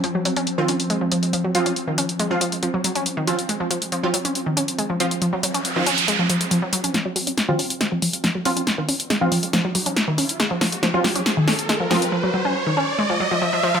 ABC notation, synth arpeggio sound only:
X:1
M:4/4
L:1/16
Q:1/4=139
K:Fphr
V:1 name="Synth arpeggio sound" clef=bass
F, G, G, D z E, D z A, F, F, z F, G, G, D | z E, D z A, F, F, z F, G, G, D z E, D z | A, F, F, z F, G, G, D z E, D z A, F, F, z | F, G, G, D z E, D z A, F, F, z F, G, G, D |
F, G, G, D z E, D z A, F, F, z F, G, G, D | z E, D z A, F, F, z F, G, G, D z E, D z | A, F, F, z F, G, G, D z E, D z A, F, F, z | F, G, G, D z E, D z A, F, G, F, F, F, F, F, |]